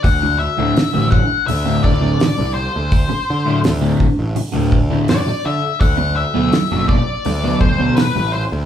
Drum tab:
HH |o-o-o-o-|o-o-o-o-|o-o-o-o-|
SD |--o---o-|--o---o-|--o---o-|
BD |o--o-o--|o--o-o--|o--o-o--|